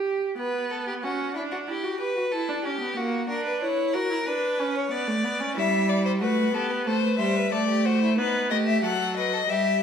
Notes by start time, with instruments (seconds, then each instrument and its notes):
Already playing: viola G4
0.38 viola B3, violin B4
0.71 violin A4
0.87 violin G4
1.03 viola C#4, violin F#4
1.35 viola D4, violin E4
1.52 violin F#4
1.68 viola E4, violin G4
1.84 viola F#4
2.00 viola G4, violin B4
2.16 viola F#4
2.32 viola E4, violin A4
2.49 viola D4
2.65 viola C#4, violin G4
2.81 viola B3
2.96 viola A#3, violin F#4
3.29 viola D4, violin A#4
3.45 violin B4
3.62 viola E4, violin C#5
3.93 viola F#4, violin A#4
4.10 viola E4
4.26 viola D4, violin B4
4.59 viola C#4
4.75 violin C#5
4.91 viola B3, violin D5
5.07 viola A3
5.24 viola B3
5.40 viola C#4
5.56 viola G3, violin E4 E5
5.89 violin D5
6.05 violin C5
6.21 viola A3, violin F#4 B4
6.54 viola B3, violin G4 A4
6.70 violin B4
6.86 viola A3, violin A4 C5
7.03 violin B4
7.19 viola G3, violin C5 E5
7.36 violin B4
7.52 viola A3, violin A4 D5
7.69 violin G4
7.85 violin F#4 C5
8.02 violin E4
8.18 viola B3, violin D#4 B4
8.50 viola A3, violin G4 D#5
8.67 violin E5
8.83 viola F#3, violin A4 F#5
9.17 violin B4 D#5
9.33 violin A4
9.49 viola G3, violin G4 E5